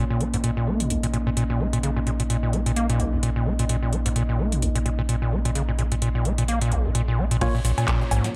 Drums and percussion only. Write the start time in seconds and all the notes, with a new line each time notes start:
0.21 closed hi-hat
0.34 closed hi-hat
0.44 closed hi-hat
0.80 closed hi-hat
0.90 closed hi-hat
1.03 closed hi-hat
1.14 closed hi-hat
1.37 closed hi-hat
1.73 closed hi-hat
1.83 closed hi-hat
2.07 closed hi-hat
2.20 closed hi-hat
2.30 closed hi-hat
2.53 closed hi-hat
2.66 closed hi-hat
2.76 closed hi-hat
2.90 closed hi-hat
3.00 closed hi-hat
3.23 closed hi-hat
3.59 closed hi-hat
3.69 closed hi-hat
3.93 closed hi-hat
4.06 closed hi-hat
4.16 closed hi-hat
4.52 closed hi-hat
4.62 closed hi-hat
4.76 closed hi-hat
4.86 closed hi-hat
5.09 closed hi-hat
5.45 closed hi-hat
5.55 closed hi-hat
5.79 closed hi-hat
5.92 closed hi-hat
6.02 closed hi-hat
6.25 closed hi-hat
6.38 closed hi-hat
6.48 closed hi-hat
6.61 closed hi-hat
6.72 closed hi-hat
6.95 closed hi-hat
7.31 closed hi-hat
7.41 kick, closed hi-hat, crash, ride, cowbell, cabasa
7.55 cabasa
7.65 open hi-hat, ride, cabasa
7.78 closed hi-hat, cowbell, cabasa
7.88 kick, snare, clap, closed hi-hat, ride, cabasa
8.01 cabasa
8.11 open hi-hat, cowbell, cabasa
8.24 snare, closed hi-hat, cabasa